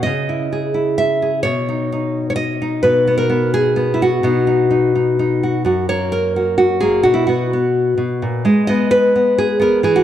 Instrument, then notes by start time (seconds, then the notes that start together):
nylon-string guitar
0.03 C#3 D#5
0.29 E4
0.52 G#4
0.74 E4
0.98 E5
1.22 G#4
1.43 B2 C#5
1.69 D#4
1.92 D#4
2.30 C#5
2.36 D#5
2.62 D#4
2.83 B2 B4
3.07 B3
3.18 A#4
3.30 B3
3.54 G#4
3.76 B3
3.94 E4
4.02 F#4
4.23 B2 B3 D#4
4.47 D#4
4.71 D#4
4.95 D#4
5.19 D#4
5.43 F#4
5.65 F#2 F#4
5.89 A#3 C#5
6.12 A#4
6.36 F#4
6.58 F#4
6.81 A#3 G#4
7.03 B2 F#4
7.14 E4
7.27 B3 F#4
7.53 B3
7.97 B2
8.22 A#2
8.45 G#3 D#5
8.67 B3 D#5
8.91 B4
9.16 B3
9.38 G#4
9.60 B3 A#4
9.83 E3 G#4
9.96 F#4